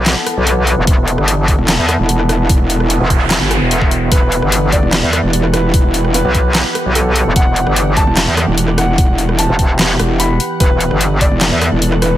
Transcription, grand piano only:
4.12 4.65 B4 loud
4.72 5.46 D5 loud
5.53 6.06 B4 medium
6.14 6.88 B4 medium
6.95 7.29 A4 medium
7.36 7.89 F#5 loud
7.97 8.70 A5 medium
8.78 9.31 F#5 medium
9.39 10.12 A5 medium
10.20 10.53 B5 medium
10.60 11.13 B4 loud
11.21 11.94 D5 medium
12.02 12.17 B4 medium

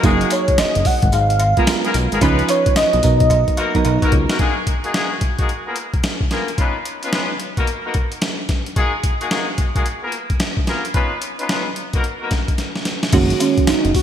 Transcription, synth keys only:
0.04 0.24 F#3 loud
0.04 0.25 A#3 loud
0.04 0.25 D#4 medium
0.04 0.25 G#4 loud
0.31 1.06 F#3 medium
0.31 1.06 A#3 medium
0.31 1.07 D#4 medium
0.31 1.07 G#4 medium
1.58 1.64 G#3 medium
1.58 1.64 B3 medium
1.58 1.64 F4 medium
1.58 1.65 A#4 medium
1.67 2.06 G#3 medium
1.67 2.06 B3 medium
1.67 2.06 F4 medium
1.67 2.06 A#4 medium
2.21 2.42 F3 loud
2.21 2.42 C#4 loud
2.21 2.42 D#4 loud
2.21 2.43 B4 loud
2.49 3.03 F3 medium
2.49 3.04 C#4 medium
2.49 3.02 D#4 medium
2.49 3.04 B4 medium
3.03 3.58 F#3 medium
3.03 3.58 B3 medium
3.03 3.58 D#4 medium
3.03 3.58 A#4 medium
3.75 3.82 F#3 loud
3.75 3.82 B3 medium
3.75 3.82 D#4 medium
3.75 3.82 A#4 loud
3.85 4.24 F#3 medium
3.85 4.24 B3 medium
3.85 4.24 D#4 medium
3.85 4.24 A#4 loud
13.13 13.33 D#3 loud
13.13 13.34 G#3 medium
13.13 13.34 A#3 medium
13.13 13.34 C#4 loud
13.13 13.34 F#4 loud
13.40 14.02 D#3 medium
13.40 14.02 G#3 medium
13.40 14.02 A#3 medium
13.40 14.02 C#4 medium
13.40 14.02 F#4 medium

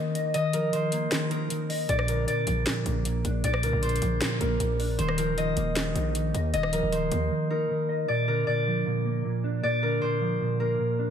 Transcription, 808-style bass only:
1.89 2.26 A#1 loud
2.47 2.66 A#1 loud
2.86 3.23 A#1 loud
3.25 3.43 A#1 loud
3.44 3.65 A#1 loud
3.63 3.72 C2 loud
3.73 4.01 A#1 loud
4.02 4.21 A#1 loud
4.41 4.59 A#1 loud
4.60 4.97 A#1 loud
4.99 5.55 D#1 loud
5.57 5.94 D#1 loud
5.96 6.33 A#1 loud
6.34 6.53 D#2 loud
6.54 6.82 D#1 loud
6.83 7.11 D#1 loud
7.12 7.30 D#2 loud

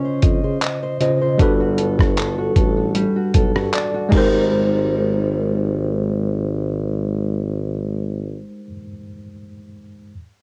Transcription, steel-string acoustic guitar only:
0.00 1.48 C#4 medium
0.00 1.21 G#4 medium
0.00 0.22 D#5 medium
0.05 0.43 C5 medium
0.23 0.60 D#5 medium
0.44 0.82 C5 medium
0.62 0.99 D#5 medium
0.83 1.20 C5 medium
1.01 1.48 D#5 medium
1.22 1.48 C5 medium
1.39 2.94 G3 medium
1.60 1.98 F#4 medium
1.78 2.16 A4 medium
1.99 2.37 F#4 medium
2.17 2.54 A4 medium
2.38 2.76 F#4 medium
2.56 3.33 A4 medium
2.77 3.15 F#4 medium
2.95 4.09 G3 medium
3.16 3.54 F#4 medium
3.34 3.72 A4 medium
3.55 3.93 F#4 medium
3.73 4.12 A4 medium
3.94 4.12 F#4 medium
4.10 8.71 G#3 medium
4.10 8.74 C4 medium
4.15 8.76 G4 medium
4.15 8.78 A#4 medium

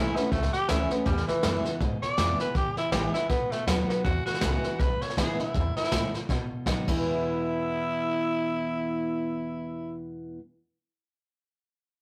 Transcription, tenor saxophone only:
0.00 0.18 E4 loud
0.16 0.31 B3 loud
0.32 0.52 A3 medium
0.53 0.70 G4 loud
0.69 0.90 E4 loud
0.90 1.05 B3 medium
1.06 1.27 G3 medium
1.28 1.64 E3 loud
2.02 2.39 D5 loud
2.40 2.55 B4 medium
2.56 2.77 G4 medium
2.78 2.91 E4 medium
2.92 3.13 G4 medium
3.14 3.29 E4 medium
3.29 3.53 B3 medium
3.51 3.66 A3 medium
3.67 3.88 B3 medium
3.88 4.04 B3 medium
4.04 4.25 F#4 medium
4.26 4.82 F#4 medium
4.80 5.03 B4 medium
5.02 5.17 C#5 medium
5.17 5.38 G#4 medium
5.39 5.75 E4 medium
5.77 6.13 E4 loud
6.88 9.98 E4 loud

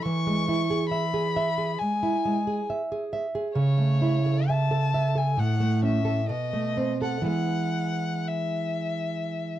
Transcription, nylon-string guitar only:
0.05 1.76 E3 soft
0.27 0.61 G#3 soft
0.48 0.83 E4 soft
0.70 1.05 G#4 soft
0.91 1.26 E5 soft
1.14 1.49 G#4 soft
1.36 1.71 E5 soft
1.58 1.93 G#4 soft
1.81 2.15 G#3 soft
2.03 2.37 E4 soft
2.25 2.59 G#3 soft
2.47 2.81 G#4 soft
2.70 3.03 E5 soft
2.92 3.25 G#4 soft
3.13 3.47 E5 medium
3.35 3.56 G#4 soft
3.55 5.35 C#3 medium
3.78 4.16 A3 soft
4.02 4.40 E4 soft
4.26 4.63 A4 soft
4.50 4.86 E5 soft
4.71 5.07 A4 soft
4.94 5.30 E5 soft
5.15 5.38 A4 soft
5.37 6.26 A2 soft
5.60 5.97 A3 soft
5.83 6.20 C#4 soft
6.05 6.29 A4 soft
6.29 7.24 B2 soft
6.53 6.92 A3 soft
6.77 7.17 C4 soft
7.02 7.27 A4 soft
7.22 9.59 E3 soft
7.22 9.59 G#3 soft
7.22 9.59 B3 soft

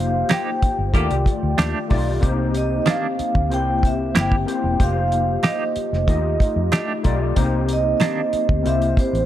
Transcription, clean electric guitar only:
0.29 0.49 A#3 medium
0.29 0.49 D#4 medium
0.29 0.50 G4 medium
1.58 1.77 A3 medium
1.58 1.78 D4 medium
1.58 1.78 G4 medium
2.86 3.06 D#3 medium
2.86 3.06 A#3 medium
2.86 3.06 D4 medium
4.15 4.34 A#3 medium
4.15 4.35 E4 medium
4.15 4.35 G4 medium
5.43 5.63 A#3 medium
5.43 5.63 D#4 medium
5.43 5.63 G4 medium
6.72 6.91 A3 medium
6.72 6.92 D4 medium
6.72 6.92 G4 medium
8.00 8.20 D#3 medium
8.00 8.20 A#3 medium
8.00 8.20 D4 medium

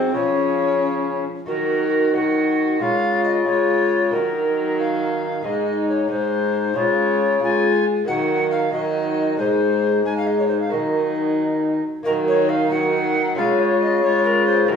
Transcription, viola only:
0.00 0.14 F#3 medium
0.15 1.26 F3 medium
1.49 2.11 F#3 medium
2.15 2.80 F#3 medium
2.81 3.46 G#3 medium
3.48 4.15 G#3 medium
4.13 5.44 F#3 medium
5.45 6.09 G#3 medium
6.11 6.75 G#3 medium
6.76 7.41 G#3 medium
7.42 8.07 G#3 medium
8.08 8.72 F#3 medium
8.74 9.41 F#3 medium
9.40 10.05 G#3 medium
10.06 10.74 G#3 medium
10.72 11.86 F#3 medium
12.06 12.68 F#3 medium
12.72 13.40 F#3 medium
13.39 14.03 G#3 medium
14.04 14.68 G#3 medium
14.70 14.76 F#3 medium

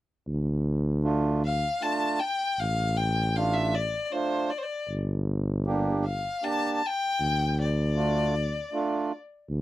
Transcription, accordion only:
1.03 1.42 A3 medium
1.03 1.43 D4 medium
1.03 1.43 F4 medium
1.81 2.20 A3 medium
1.81 2.20 D4 soft
1.81 2.20 F4 medium
3.35 3.74 A3 medium
3.35 3.74 D4 medium
3.35 3.75 F4 medium
4.12 4.51 A3 medium
4.12 4.51 D4 medium
4.12 4.51 F4 medium
5.66 6.05 A#3 medium
5.66 6.05 D4 medium
5.66 6.05 G4 medium
6.43 6.81 A#3 medium
6.43 6.82 D4 soft
6.43 6.82 G4 medium
7.95 8.35 A3 medium
7.95 8.35 D4 soft
7.95 8.35 F4 medium
8.72 9.12 A3 medium
8.72 9.12 D4 medium
8.72 9.12 F4 medium

